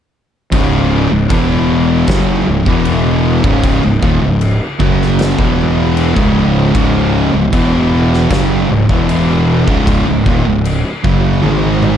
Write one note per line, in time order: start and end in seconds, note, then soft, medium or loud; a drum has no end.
0.52 1.07 C#1 loud
0.52 1.10 C#2 medium
0.52 1.10 G#2 loud
0.52 1.10 C#3 loud
0.52 kick loud
0.52 crash medium
1.11 1.29 C#1 medium
1.11 1.30 C#2 medium
1.11 1.31 G#2 medium
1.30 2.04 E1 loud
1.30 2.07 E2 medium
1.30 2.07 B2 loud
1.30 2.07 E3 loud
1.30 kick loud
1.30 crash medium
2.07 2.44 F#1 loud
2.07 2.46 F#2 loud
2.07 2.46 C#3 medium
2.07 2.47 F#3 loud
2.07 kick loud
2.07 snare loud
2.07 crash medium
2.47 2.65 C#1 medium
2.47 2.66 C#2 medium
2.47 2.66 G#2 medium
2.66 3.40 E1 medium
2.66 3.43 E2 medium
2.66 3.43 B2 loud
2.66 3.43 E3 loud
2.66 kick loud
2.85 crash medium
3.44 3.81 C#1 loud
3.44 3.82 C#2 loud
3.44 3.82 G#2 loud
3.44 3.82 C#3 loud
3.44 kick loud
3.63 kick loud
3.63 crash medium
3.83 4.02 C#1 medium
3.83 4.02 C#2 medium
3.83 4.02 G#2 medium
4.02 4.21 D#1 medium
4.02 4.21 D#2 medium
4.02 4.21 A#2 loud
4.02 kick loud
4.22 4.58 C#1 medium
4.22 4.53 C#2 medium
4.22 4.54 G#2 medium
4.41 crash medium
4.80 5.35 F#1 loud
4.80 5.37 F#2 medium
4.80 5.37 C#3 loud
4.80 5.38 F#3 loud
4.80 kick loud
5.02 snare soft
5.19 snare loud
5.19 crash medium
5.38 6.13 E1 loud
5.38 6.15 E2 medium
5.38 6.16 B2 medium
5.38 6.16 E3 medium
5.38 kick loud
5.97 crash medium
6.16 6.71 C#1 medium
6.16 6.73 C#2 medium
6.16 6.74 G#2 loud
6.16 6.74 C#3 medium
6.16 kick loud
6.74 7.30 C#1 loud
6.74 7.32 C#2 medium
6.74 7.32 G#2 loud
6.74 7.33 C#3 medium
6.74 kick loud
6.74 crash medium
7.34 7.52 C#1 medium
7.34 7.53 C#2 medium
7.34 7.53 G#2 medium
7.53 8.27 E1 medium
7.53 8.30 E2 loud
7.53 8.30 B2 loud
7.53 8.31 E3 loud
7.53 kick loud
7.53 crash medium
8.14 snare soft
8.30 8.67 F#1 loud
8.30 8.69 F#2 loud
8.30 8.69 C#3 medium
8.30 8.69 F#3 loud
8.30 kick loud
8.30 snare loud
8.30 crash medium
8.70 8.88 C#1 medium
8.70 8.89 C#2 medium
8.70 8.89 G#2 medium
8.89 9.64 E1 medium
8.89 9.66 E2 medium
8.89 9.67 B2 medium
8.89 9.67 E3 loud
8.89 kick loud
9.09 crash medium
9.67 10.04 C#1 medium
9.67 10.05 C#2 loud
9.67 10.05 G#2 loud
9.67 10.06 C#3 loud
9.67 kick loud
9.87 kick loud
9.87 crash medium
10.07 10.25 C#1 medium
10.07 10.26 C#2 medium
10.07 10.26 G#2 medium
10.26 10.44 D#1 loud
10.26 10.45 D#2 medium
10.26 10.45 A#2 loud
10.26 kick loud
10.46 10.82 C#1 medium
10.46 10.77 C#2 medium
10.46 10.77 G#2 medium
10.65 crash medium
11.04 11.41 F#1 medium
11.04 11.42 F#2 loud
11.04 11.42 C#3 loud
11.04 11.42 F#3 loud
11.04 kick loud
11.43 11.97 G#1 medium
11.43 11.97 G#2 medium
11.43 11.97 D#3 medium
11.43 11.97 G#3 medium
11.43 high tom medium
11.83 mid tom medium